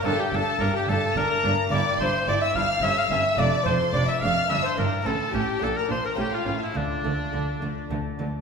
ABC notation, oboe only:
X:1
M:3/4
L:1/16
Q:1/4=108
K:Gm
V:1 name="Oboe"
A G A2 B G A2 B3 z | [K:Dm] d2 c2 d e f2 e f e2 | d2 c2 d e f2 e c B2 | A2 G2 A B c B G F2 E |
D8 z4 |]